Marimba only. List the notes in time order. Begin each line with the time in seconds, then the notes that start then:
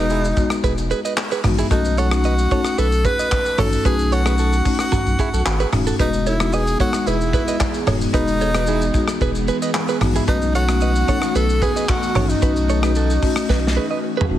Already playing: G#3 B3 D#4 F#4
0.37 G#3 B3 D#4 F#4
1.44 G#3 B3 D#4 F#4
1.71 A3 C#4 D#4 F#4
2.12 A3 C#4 D#4 F#4
2.51 A3 C#4 D#4 F#4
3.58 A3 C#4 D#4 F#4
3.85 A3 C#4 D#4 F#4
4.26 A3 C#4 D#4 F#4
4.65 A3 C#4 D#4 F#4
5.72 A3 C#4 D#4 F#4
5.99 G#3 B3 D#4 F#4
6.40 G#3 B3 D#4 F#4
6.79 G#3 B3 D#4 F#4
7.87 G#3 B3 D#4 F#4
8.13 G#3 B3 D#4 F#4
8.54 G#3 B3 D#4 F#4
8.94 G#3 B3 D#4 F#4
10.01 G#3 B3 D#4 F#4
10.27 A3 C#4 D#4 F#4
10.68 A3 C#4 D#4 F#4
11.08 A3 C#4 D#4 F#4
12.15 A3 C#4 D#4 F#4
12.42 A3 C#4 D#4 F#4
12.83 A3 C#4 D#4 F#4
13.22 A3 C#4 D#4 F#4
14.29 A3 C#4 D#4 F#4